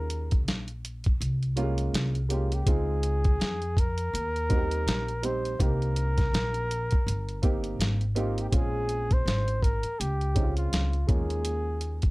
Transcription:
Already playing: upright bass D#2, upright piano G#3 A#3 C#4 F4, flugelhorn A#4
0.10 closed hi-hat
0.31 kick, closed hi-hat
0.47 upright bass A#1, snare, closed hi-hat
0.68 closed hi-hat
0.85 closed hi-hat
1.04 kick, closed hi-hat
1.21 upright bass C2, closed hi-hat
1.43 closed hi-hat
1.56 upright piano G3 A#3 C#4 F4, closed hi-hat
1.62 upright piano G#3
1.78 closed hi-hat
1.94 upright bass C2, snare, closed hi-hat
2.15 closed hi-hat
2.29 upright piano G#3 A#3 C#4 G4, flugelhorn F4, closed hi-hat
2.52 flugelhorn G4, closed hi-hat
2.66 upright bass C#2, upright piano G#3 C4 D#4 F4, flugelhorn G#4, kick, closed hi-hat
3.03 closed hi-hat
3.24 kick, closed hi-hat
3.40 upright bass F2, snare, closed hi-hat
3.62 closed hi-hat
3.77 flugelhorn A#4, kick, closed hi-hat
3.98 closed hi-hat
4.13 upright bass D#2, closed hi-hat
4.36 closed hi-hat
4.49 upright piano G3 C4 D#4 F#4, kick, closed hi-hat
4.57 upright piano G4
4.71 closed hi-hat
4.87 upright bass A#1, snare, closed hi-hat
5.08 closed hi-hat
5.22 upright piano G3 C4 D#4 G4, flugelhorn C5, closed hi-hat
5.45 closed hi-hat
5.59 upright bass C2, upright piano A#3 C4 D#4 G4, flugelhorn A#4, kick, closed hi-hat
5.82 closed hi-hat
5.96 closed hi-hat
6.18 kick, snare, closed hi-hat
6.33 upright bass A#1, snare, closed hi-hat
6.54 closed hi-hat
6.71 closed hi-hat
6.91 muted upright bass stroke, kick, closed hi-hat
7.07 upright bass G1, closed hi-hat
7.29 closed hi-hat
7.42 upright piano A#3 C4 D#4 G4, kick, closed hi-hat
7.64 closed hi-hat
7.79 upright bass G#1, snare, closed hi-hat
8.01 closed hi-hat
8.15 upright piano A#3 C4 D#4 G4, flugelhorn F4, closed hi-hat
8.38 flugelhorn G4, closed hi-hat
8.49 upright bass A#1, upright piano G#3 C4 C#4, flugelhorn G4, kick, closed hi-hat
8.53 upright piano F4, flugelhorn G#4
8.89 closed hi-hat
9.11 flugelhorn C5, kick, closed hi-hat
9.26 upright bass G#1, snare, closed hi-hat
9.48 closed hi-hat
9.63 flugelhorn A#4, kick, closed hi-hat
9.83 muted upright bass stroke, closed hi-hat
10.00 upright bass C#2, flugelhorn G4, closed hi-hat
10.21 closed hi-hat
10.35 upright piano G#3 C4 C#4 D#4, kick, closed hi-hat
10.43 upright piano F4
10.57 flugelhorn F4, closed hi-hat
10.73 upright bass C#2, snare, closed hi-hat
10.93 closed hi-hat
11.07 upright bass D#2, upright piano G#3 A#3 C#4 F4, flugelhorn G#4, kick, closed hi-hat
11.30 closed hi-hat
11.45 closed hi-hat
11.81 closed hi-hat
12.02 kick, closed hi-hat

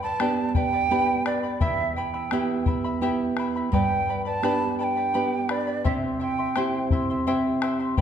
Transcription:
Already playing: nylon-string guitar G2
0.03 charango B4 D5 B5, quena A5
0.20 nylon-string guitar B3 D4 G4, charango G4 B4 D5 G5 B5, bombo rim
0.49 quena A5
0.55 charango B4 D5 G5 B5, quena G5, bombo low
0.73 charango B4 D5 B5
0.91 nylon-string guitar B3 D4 G4, charango G4 B4 D5 G5 B5
1.26 charango B4 D5 G5 B5, quena D5, bombo rim
1.43 charango B4 D5 B5
1.60 nylon-string guitar E2, charango E4 G4 E5 G5 B5, quena E5, bombo low
1.96 charango E4 E5 G5 B5, quena G5
2.14 charango E4 E5 B5, bombo rim
2.31 nylon-string guitar B3 E4 G4, charango E4 G4 E5 G5 B5, bombo rim
2.48 bombo rim
2.66 charango E4 E5 G5 B5, bombo low
2.84 charango E4 E5 B5
3.01 nylon-string guitar B3 E4 G4, charango E4 G4 E5 G5 B5
3.37 charango E4 E5 G5 B5, bombo rim
3.56 charango E4 E5 B5
3.72 nylon-string guitar G2, charango G4 B4 D5 G5 B5, quena G5, bombo low
3.90 bombo rim
4.08 charango B4 D5 G5 B5
4.25 charango B4 D5 B5, quena A5
4.42 nylon-string guitar B3 D4 G4, charango G4 B4 D5 G5 B5, bombo rim
4.79 charango B4 D5 G5 B5, quena A5
4.84 quena G5
4.96 charango B4 D5 B5
5.14 nylon-string guitar B3 D4 G4, charango G4 B4 D5 G5 B5
5.49 charango B4 D5 G5 B5, quena D5, bombo rim
5.67 charango B4 D5 B5
5.84 nylon-string guitar C3, charango E4 C5 E5 G5 C6, quena E5, bombo low
6.03 bombo rim
6.20 charango E4 E5 G5 C6, quena G5
6.38 charango E4 E5 C6
6.56 nylon-string guitar C4 E4 G4, charango E4 C5 E5 G5 C6, bombo rim
6.90 charango E4 E5 G5 C6, bombo low
7.10 charango E4 E5 C6
7.27 nylon-string guitar C4 E4 G4, charango E4 C5 E5 G5 C6
7.62 charango E4 E5 G5 C6, bombo rim
7.80 charango E4 E5 C6
7.97 nylon-string guitar G2, charango G4 B4 D5 G5, bombo low

